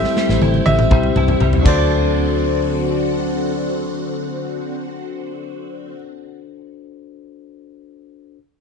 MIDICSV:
0, 0, Header, 1, 7, 480
1, 0, Start_track
1, 0, Tempo, 495868
1, 1842, Time_signature, 4, 2, 24, 8
1, 8330, End_track
2, 0, Start_track
2, 0, Title_t, "Grand piano"
2, 0, Program_c, 0, 0
2, 0, Note_on_c, 0, 76, 106
2, 366, Note_off_c, 0, 76, 0
2, 636, Note_on_c, 0, 76, 107
2, 1560, Note_off_c, 0, 76, 0
2, 1608, Note_on_c, 0, 74, 84
2, 5758, Note_off_c, 0, 74, 0
2, 8330, End_track
3, 0, Start_track
3, 0, Title_t, "Tine electric piano"
3, 0, Program_c, 1, 4
3, 0, Control_c, 1, 64, 127
3, 0, Note_on_c, 1, 60, 88
3, 0, Note_on_c, 1, 64, 79
3, 0, Note_on_c, 1, 67, 81
3, 0, Note_on_c, 1, 69, 77
3, 0, Note_on_c, 1, 72, 95
3, 853, Note_off_c, 1, 60, 0
3, 856, Note_off_c, 1, 64, 0
3, 859, Note_off_c, 1, 67, 0
3, 861, Note_off_c, 1, 69, 0
3, 864, Note_off_c, 1, 72, 0
3, 873, Note_on_c, 1, 60, 70
3, 878, Note_on_c, 1, 64, 64
3, 884, Note_on_c, 1, 67, 60
3, 890, Note_on_c, 1, 72, 63
3, 893, Control_c, 1, 64, 0
3, 896, Note_on_c, 1, 76, 78
3, 1036, Control_c, 1, 64, 127
3, 1580, Note_on_c, 1, 62, 88
3, 1583, Note_off_c, 1, 60, 0
3, 1586, Note_off_c, 1, 64, 0
3, 1589, Note_off_c, 1, 67, 0
3, 1592, Note_off_c, 1, 72, 0
3, 1595, Note_off_c, 1, 76, 0
3, 1596, Note_on_c, 1, 66, 79
3, 1612, Note_on_c, 1, 69, 81
3, 1614, Control_c, 1, 64, 0
3, 1627, Note_on_c, 1, 72, 97
3, 1711, Control_c, 1, 64, 127
3, 1855, Control_c, 1, 64, 0
3, 2045, Control_c, 1, 64, 127
3, 5729, Note_off_c, 1, 62, 0
3, 5745, Note_off_c, 1, 66, 0
3, 5761, Note_off_c, 1, 69, 0
3, 5776, Note_off_c, 1, 72, 0
3, 8115, Control_c, 1, 64, 0
3, 8330, End_track
4, 0, Start_track
4, 0, Title_t, "String machine"
4, 0, Program_c, 2, 50
4, 0, Note_on_c, 2, 57, 79
4, 0, Note_on_c, 2, 60, 69
4, 0, Note_on_c, 2, 67, 89
4, 869, Note_off_c, 2, 57, 0
4, 869, Note_off_c, 2, 67, 0
4, 870, Note_off_c, 2, 60, 0
4, 884, Note_on_c, 2, 55, 70
4, 884, Note_on_c, 2, 64, 83
4, 885, Note_on_c, 2, 48, 74
4, 1596, Note_off_c, 2, 48, 0
4, 1596, Note_off_c, 2, 55, 0
4, 1596, Note_off_c, 2, 64, 0
4, 1601, Note_on_c, 2, 66, 85
4, 1603, Note_on_c, 2, 50, 82
4, 1603, Note_on_c, 2, 60, 71
4, 5751, Note_off_c, 2, 66, 0
4, 5753, Note_off_c, 2, 50, 0
4, 5753, Note_off_c, 2, 60, 0
4, 8330, End_track
5, 0, Start_track
5, 0, Title_t, "Clean electric guitar"
5, 0, Program_c, 3, 27
5, 0, Note_on_c, 3, 55, 87
5, 151, Note_off_c, 3, 55, 0
5, 163, Note_on_c, 3, 55, 64
5, 403, Note_on_c, 3, 64, 69
5, 632, Note_off_c, 3, 55, 0
5, 644, Note_on_c, 3, 55, 63
5, 874, Note_off_c, 3, 55, 0
5, 885, Note_on_c, 3, 55, 86
5, 931, Note_off_c, 3, 64, 0
5, 1126, Note_on_c, 3, 64, 72
5, 1352, Note_off_c, 3, 55, 0
5, 1364, Note_on_c, 3, 55, 68
5, 1547, Note_off_c, 3, 55, 0
5, 1551, Note_on_c, 3, 54, 89
5, 1604, Note_off_c, 3, 64, 0
5, 1620, Note_on_c, 3, 60, 96
5, 1674, Note_on_c, 3, 62, 97
5, 1724, Note_on_c, 3, 69, 103
5, 5740, Note_off_c, 3, 54, 0
5, 5808, Note_off_c, 3, 60, 0
5, 5862, Note_off_c, 3, 62, 0
5, 5912, Note_off_c, 3, 69, 0
5, 8330, End_track
6, 0, Start_track
6, 0, Title_t, "Fingered electric bass"
6, 0, Program_c, 4, 33
6, 283, Note_on_c, 4, 33, 98
6, 369, Note_off_c, 4, 33, 0
6, 402, Note_on_c, 4, 33, 103
6, 575, Note_off_c, 4, 33, 0
6, 642, Note_on_c, 4, 33, 107
6, 884, Note_off_c, 4, 33, 0
6, 884, Note_on_c, 4, 36, 101
6, 1056, Note_off_c, 4, 36, 0
6, 1121, Note_on_c, 4, 36, 100
6, 1294, Note_off_c, 4, 36, 0
6, 1363, Note_on_c, 4, 36, 97
6, 1536, Note_off_c, 4, 36, 0
6, 1604, Note_on_c, 4, 38, 97
6, 5753, Note_off_c, 4, 38, 0
6, 8330, End_track
7, 0, Start_track
7, 0, Title_t, "Drums"
7, 41, Note_on_c, 9, 38, 57
7, 138, Note_off_c, 9, 38, 0
7, 161, Note_on_c, 9, 38, 74
7, 258, Note_off_c, 9, 38, 0
7, 283, Note_on_c, 9, 38, 61
7, 380, Note_off_c, 9, 38, 0
7, 402, Note_on_c, 9, 48, 81
7, 499, Note_off_c, 9, 48, 0
7, 522, Note_on_c, 9, 48, 70
7, 619, Note_off_c, 9, 48, 0
7, 642, Note_on_c, 9, 48, 89
7, 739, Note_off_c, 9, 48, 0
7, 761, Note_on_c, 9, 47, 77
7, 858, Note_off_c, 9, 47, 0
7, 881, Note_on_c, 9, 47, 98
7, 884, Note_on_c, 9, 36, 96
7, 978, Note_off_c, 9, 47, 0
7, 981, Note_off_c, 9, 36, 0
7, 1001, Note_on_c, 9, 47, 82
7, 1098, Note_off_c, 9, 47, 0
7, 1122, Note_on_c, 9, 45, 104
7, 1218, Note_off_c, 9, 45, 0
7, 1241, Note_on_c, 9, 45, 85
7, 1338, Note_off_c, 9, 45, 0
7, 1360, Note_on_c, 9, 45, 101
7, 1457, Note_off_c, 9, 45, 0
7, 1480, Note_on_c, 9, 43, 93
7, 1577, Note_off_c, 9, 43, 0
7, 1602, Note_on_c, 9, 49, 89
7, 1603, Note_on_c, 9, 36, 108
7, 1699, Note_off_c, 9, 49, 0
7, 1700, Note_off_c, 9, 36, 0
7, 8330, End_track
0, 0, End_of_file